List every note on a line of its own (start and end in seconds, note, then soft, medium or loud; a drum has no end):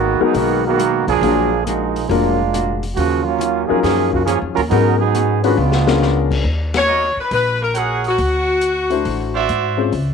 0.00 0.17 G#1 medium
0.00 0.23 D#3 medium
0.00 0.22 G#3 medium
0.00 0.23 A#3 medium
0.00 0.22 B3 medium
0.00 0.23 B3 medium
0.00 0.23 F#4 loud
0.00 0.23 F#4 medium
0.00 0.23 A#4 medium
0.19 0.37 F#3 medium
0.19 0.76 G#3 medium
0.19 0.76 B3 medium
0.19 0.36 B3 medium
0.19 0.76 D#4 medium
0.19 0.76 F#4 medium
0.19 0.76 A#4 medium
0.19 muted upright bass stroke soft
0.23 0.37 D#4 medium
0.23 0.37 G#4 loud
0.34 1.03 B1 medium
0.34 0.65 D#3 medium
0.34 0.66 G#3 soft
0.34 0.65 A#3 medium
0.34 0.66 B3 soft
0.34 0.66 B3 medium
0.34 0.65 F#4 loud
0.34 0.67 F#4 medium
0.34 open hi-hat medium
0.38 0.68 A#4 soft
0.67 1.06 D#3 medium
0.67 1.06 A#3 medium
0.67 1.07 B3 medium
0.67 1.06 F#4 loud
0.79 1.10 G#3 medium
0.79 1.10 B3 medium
0.79 1.10 F#4 medium
0.79 1.11 A#4 medium
0.79 closed hi-hat medium
1.07 1.21 B1 medium
1.07 1.62 F3 medium
1.07 1.62 A#3 medium
1.07 1.62 D4 medium
1.07 1.63 G#4 loud
1.07 open hi-hat soft
1.21 2.05 A#1 medium
1.21 1.53 A#2 soft
1.21 1.49 F#3 medium
1.21 1.54 G#3 soft
1.21 1.49 A#3 medium
1.21 1.49 D4 medium
1.21 1.49 F4 medium
1.21 1.49 G#4 medium
1.21 open hi-hat soft
1.25 1.55 D4 soft
1.25 1.55 F#4 medium
1.65 1.97 A#2 medium
1.65 2.09 F3 medium
1.65 2.08 G#3 medium
1.65 1.97 G#3 medium
1.65 2.08 A#3 medium
1.65 1.98 D4 medium
1.65 2.10 D#4 medium
1.65 closed hi-hat medium
1.69 1.98 F#4 medium
1.96 open hi-hat soft
2.09 2.93 F1 medium
2.09 2.41 A#2 soft
2.09 2.36 F#3 medium
2.09 2.82 G#3 medium
2.09 2.41 G#3 medium
2.09 2.82 A#3 medium
2.09 2.36 A#3 medium
2.09 2.82 D4 medium
2.09 2.36 D4 medium
2.09 2.82 F4 medium
2.09 2.36 F4 medium
2.09 2.37 A#4 medium
2.09 open hi-hat medium
2.13 2.42 D4 medium
2.13 2.43 F#4 medium
2.53 2.84 A#2 medium
2.53 2.84 G#3 medium
2.53 2.84 D4 medium
2.53 2.85 F#4 medium
2.53 closed hi-hat medium
2.83 open hi-hat soft
2.94 3.65 D#2 medium
2.94 3.23 C#3 medium
2.94 3.27 D#3 soft
2.94 3.23 F3 medium
2.94 3.22 A#3 medium
2.94 3.22 F#4 medium
2.94 open hi-hat medium
2.98 3.28 F#3 soft
2.98 3.29 C#4 soft
2.98 3.29 F4 soft
3.24 3.68 F#3 medium
3.24 3.66 A#3 medium
3.24 3.65 C#4 medium
3.24 3.69 F4 medium
3.38 3.70 D#3 medium
3.38 3.70 F#3 medium
3.38 3.71 C#4 medium
3.38 3.71 F4 medium
3.38 closed hi-hat medium
3.66 3.82 F3 medium
3.66 4.24 F#3 medium
3.66 3.82 A#3 medium
3.66 3.81 C#4 medium
3.66 4.25 C#4 medium
3.66 4.24 D#4 medium
3.66 4.24 F4 medium
3.66 3.81 G#4 medium
3.66 muted upright bass stroke soft
3.70 4.25 A#4 medium
3.82 4.38 F#2 loud
3.82 4.14 D#3 medium
3.82 4.10 F3 medium
3.82 4.14 F#3 medium
3.82 4.10 A#3 medium
3.82 4.10 C#4 medium
3.82 4.15 C#4 medium
3.82 4.10 G#4 loud
3.82 snare soft
3.82 open hi-hat medium
3.87 4.16 F4 medium
4.12 4.26 C#3 medium
4.12 4.24 F3 medium
4.12 4.24 A#3 medium
4.12 4.26 F#4 medium
4.12 kick medium
4.25 4.57 D#3 medium
4.25 4.39 F3 medium
4.25 4.58 F#3 medium
4.25 4.39 A#3 medium
4.25 4.39 C#4 medium
4.25 4.58 C#4 medium
4.25 4.39 G#4 medium
4.25 closed hi-hat medium
4.30 4.59 F4 medium
4.42 4.55 F2 medium
4.55 4.70 D#2 medium
4.55 4.62 F#3 medium
4.55 4.62 C#4 medium
4.55 4.62 F4 medium
4.55 4.62 A#4 loud
4.55 open hi-hat soft
4.69 5.01 G#2 soft
4.69 5.54 G#2 medium
4.69 4.97 F#3 medium
4.69 5.02 F#3 soft
4.69 4.97 G#3 medium
4.69 4.97 B3 loud
4.69 4.97 B3 medium
4.69 4.97 C#4 medium
4.69 4.97 D#4 medium
4.69 4.98 F#4 medium
4.69 4.97 A#4 loud
4.69 4.98 A#4 medium
4.69 open hi-hat medium
4.73 5.02 B3 medium
4.73 5.03 C#4 medium
4.99 5.40 F#3 medium
4.99 5.40 B3 medium
4.99 5.40 D#4 medium
4.99 5.40 G#4 loud
5.15 5.45 G#2 medium
5.15 5.45 F#3 medium
5.15 5.46 B3 medium
5.15 5.46 C#4 medium
5.15 closed hi-hat medium
5.43 5.57 D#3 medium
5.43 5.57 G#3 medium
5.43 5.57 A#3 medium
5.43 5.55 B3 medium
5.43 5.56 C#4 medium
5.43 5.57 D4 medium
5.43 5.57 F4 medium
5.43 5.57 F#4 medium
5.43 5.57 B4 medium
5.43 open hi-hat soft
5.56 6.40 C#2 medium
5.56 5.88 C#3 medium
5.56 5.89 F3 soft
5.56 6.30 G#3 medium
5.56 6.30 B3 medium
5.56 6.29 D4 medium
5.56 6.30 F4 medium
5.60 5.90 B3 soft
5.60 5.90 D4 medium
5.72 snare medium
5.87 6.42 G#3 medium
5.87 6.42 C#4 medium
5.87 6.42 D4 medium
5.87 6.42 F4 medium
5.87 6.42 A#4 medium
5.87 snare medium
6.01 6.32 C#3 medium
6.01 6.32 F3 medium
6.01 6.33 B3 medium
6.01 6.33 D4 medium
6.01 snare medium
6.31 kick medium
6.31 crash medium
6.44 7.13 D#2 medium
6.74 7.16 C#5 loud
6.74 snare medium
6.74 ride medium
6.87 7.08 F#4 medium
6.87 7.07 A#4 medium
6.87 7.08 C#5 medium
6.87 7.07 D#5 medium
7.17 7.32 B4 medium
7.17 muted upright bass stroke soft
7.31 8.14 A#1 medium
7.31 7.59 B4 loud
7.31 open hi-hat soft
7.62 7.75 A#4 medium
7.75 8.18 F#4 medium
7.75 8.05 G#4 medium
7.75 8.19 A#4 medium
7.75 8.19 C#5 medium
7.75 8.19 F#5 medium
7.75 closed hi-hat medium
8.04 9.76 F#4 medium
8.04 open hi-hat soft
8.18 9.02 D2 medium
8.18 open hi-hat soft
8.61 closed hi-hat medium
8.90 9.46 A3 medium
8.90 9.46 D4 medium
8.90 9.46 E4 medium
8.90 9.46 F#4 medium
8.90 9.47 C5 medium
8.90 open hi-hat soft
9.05 9.46 A1 medium
9.05 open hi-hat soft
9.35 9.90 F#4 loud
9.35 9.90 C5 medium
9.35 9.90 D5 medium
9.35 9.90 E5 loud
9.49 9.90 G#2 medium
9.49 closed hi-hat soft
9.77 9.91 G#3 medium
9.77 9.91 C4 medium
9.77 9.91 C#4 medium
9.77 9.91 F4 medium
9.77 9.91 C5 medium
9.92 10.14 C#2 medium
9.92 open hi-hat soft